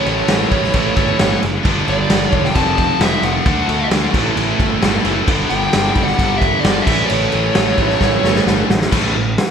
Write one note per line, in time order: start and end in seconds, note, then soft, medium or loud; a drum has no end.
0.00 0.72 A2 loud
0.00 0.73 E3 loud
0.00 0.73 A3 loud
0.00 0.74 C#4 loud
0.00 0.74 E4 loud
0.06 0.22 A1 medium
0.06 1.38 C#5 medium
0.06 crash medium
0.26 0.44 A1 medium
0.26 0.94 A2 medium
0.26 0.95 E3 medium
0.26 0.95 A3 medium
0.26 snare loud
0.26 crash medium
0.51 0.67 A1 medium
0.51 1.42 E3 medium
0.51 1.41 A3 medium
0.51 kick medium
0.51 crash medium
0.56 1.43 A2 medium
0.64 snare soft
0.73 0.90 A1 medium
0.73 0.95 A2 medium
0.73 0.95 E3 medium
0.73 0.96 A3 medium
0.73 0.96 C#4 medium
0.73 kick medium
0.73 crash medium
0.77 0.95 E4 medium
0.96 1.12 G1 medium
0.96 1.42 A2 medium
0.96 1.42 E3 medium
0.96 1.41 A3 medium
0.96 1.41 C#4 medium
0.96 1.40 E4 medium
0.96 kick medium
0.96 crash medium
1.19 1.35 G1 medium
1.19 snare loud
1.19 crash medium
1.43 1.58 F#1 medium
1.43 crash medium
1.63 1.81 G1 loud
1.63 2.53 G2 medium
1.63 2.54 D3 loud
1.63 2.54 G3 medium
1.63 2.55 B3 medium
1.63 2.55 D4 loud
1.63 kick loud
1.63 crash medium
1.88 2.03 G1 medium
1.88 2.30 D5 medium
1.88 crash medium
2.10 2.26 G1 medium
2.10 snare loud
2.10 crash medium
2.30 2.48 E1 medium
2.30 2.54 D3 medium
2.30 2.53 G3 medium
2.30 2.47 C#5 medium
2.30 kick medium
2.30 crash medium
2.35 2.54 G2 medium
2.45 2.55 G5 medium
2.45 snare soft
2.55 2.87 F1 loud
2.55 3.22 F2 medium
2.55 3.45 F2 medium
2.55 3.23 C3 loud
2.55 3.45 C3 medium
2.55 3.44 F3 medium
2.55 3.45 A3 medium
2.55 3.46 C4 medium
2.55 2.78 A5 loud
2.55 kick medium
2.55 crash medium
2.59 3.47 F3 loud
2.59 3.46 F4 loud
2.78 3.02 A5 loud
2.78 kick medium
2.78 crash medium
3.00 3.16 F1 medium
3.00 3.24 E5 medium
3.00 snare loud
3.00 crash medium
3.22 3.39 F1 medium
3.22 3.46 F2 medium
3.22 3.45 C3 medium
3.22 3.44 F3 loud
3.22 3.88 F#5 medium
3.22 crash medium
3.45 3.62 D2 medium
3.45 4.12 D3 medium
3.45 4.13 A3 medium
3.45 4.14 D4 medium
3.45 4.14 F#4 loud
3.45 kick loud
3.45 crash medium
3.69 3.84 D2 medium
3.69 crash medium
3.91 4.07 D2 medium
3.91 snare loud
3.91 crash medium
4.12 4.30 A1 medium
4.12 5.25 A2 medium
4.12 5.26 E3 loud
4.12 5.26 A3 loud
4.12 5.27 C#4 medium
4.12 5.27 E4 loud
4.12 kick loud
4.12 crash loud
4.37 4.53 A1 medium
4.37 crash medium
4.60 4.75 G1 medium
4.60 kick medium
4.60 crash medium
4.82 4.98 G1 medium
4.82 5.26 A2 medium
4.82 5.27 E3 medium
4.82 5.28 A3 medium
4.82 snare loud
4.82 crash medium
5.04 5.21 F#1 medium
5.04 5.28 A2 medium
5.04 5.27 E3 medium
5.04 5.26 A3 medium
5.04 crash medium
5.27 5.44 G1 loud
5.27 6.39 G2 medium
5.27 6.40 D3 loud
5.27 6.40 G3 loud
5.27 6.40 B3 loud
5.27 6.39 D4 loud
5.27 kick loud
5.27 crash medium
5.49 5.67 G1 medium
5.49 6.03 G5 loud
5.49 crash medium
5.73 5.90 G1 medium
5.73 snare loud
5.73 crash medium
5.95 6.12 G1 medium
5.95 6.64 D3 medium
5.95 6.63 G3 medium
5.95 kick medium
5.95 crash medium
6.00 6.62 G2 medium
6.00 6.37 F#5 loud
6.07 snare soft
6.18 6.50 G1 loud
6.18 6.85 G2 medium
6.18 6.86 D3 medium
6.18 6.87 G3 medium
6.18 kick medium
6.18 crash medium
6.38 6.62 B3 medium
6.38 6.62 D4 loud
6.38 6.63 E5 medium
6.38 kick medium
6.42 6.62 G2 medium
6.42 6.63 D3 medium
6.42 6.63 G3 medium
6.42 crash medium
6.60 6.85 G2 medium
6.60 6.85 D3 medium
6.60 6.85 D5 medium
6.64 6.80 G1 loud
6.64 6.86 G3 medium
6.64 6.86 B3 medium
6.64 6.87 D4 medium
6.64 snare loud
6.64 crash medium
6.82 7.98 A2 loud
6.82 7.08 E5 medium
6.86 7.03 A1 medium
6.86 7.99 E3 loud
6.86 7.99 A3 loud
6.86 8.00 C#4 loud
6.86 8.00 E4 loud
6.86 kick loud
6.86 crash loud
7.05 8.40 C#5 medium
7.10 7.26 A1 loud
7.10 crash medium
7.32 7.49 A1 medium
7.32 crash medium
7.55 7.72 A1 medium
7.55 8.22 A2 medium
7.55 8.23 E3 medium
7.55 8.23 A3 medium
7.55 snare loud
7.55 crash medium
7.78 7.94 A1 medium
7.78 8.69 E3 medium
7.78 8.68 A3 medium
7.78 kick medium
7.78 crash medium
7.82 8.70 A2 medium
7.90 snare soft
8.00 8.17 A1 medium
8.00 8.22 A2 medium
8.00 8.22 E3 medium
8.00 8.23 A3 medium
8.00 8.23 C#4 medium
8.00 8.21 E4 medium
8.00 kick medium
8.00 snare medium
8.23 8.40 G1 medium
8.23 8.69 E3 medium
8.23 8.68 A3 medium
8.23 8.68 C#4 medium
8.23 8.67 E4 medium
8.23 snare medium
8.27 8.69 A2 medium
8.36 snare medium
8.47 8.62 G1 medium
8.47 snare medium
8.70 8.85 A1 medium
8.70 snare loud
8.82 snare medium
8.92 9.13 A1 medium
8.92 9.14 A2 medium
8.92 9.14 E3 loud
8.92 9.15 A3 medium
8.92 kick loud
8.92 crash loud
9.16 9.36 A1 medium
9.16 9.33 A2 medium
9.16 9.34 E3 medium
9.38 snare loud
9.38 open hi-hat medium